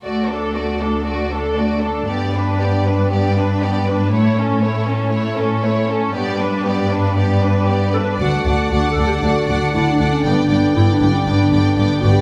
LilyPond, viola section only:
\new Staff \with { instrumentName = "Viola section" } { \time 4/4 \key d \major \tempo 4 = 118 a8 d'8 a8 d'8 a8 d'8 a8 d'8 | b8 d'8 b8 d'8 b8 d'8 b8 d'8 | a8 cis'8 a8 cis'8 a8 cis'8 a8 cis'8 | b8 d'8 b8 d'8 b8 d'8 b8 d'8 |
d'8 d'8 d'8 d'8 d'8 d'8 d'8 d'8 | b8 b8 b8 b8 b8 b8 b8 b8 | }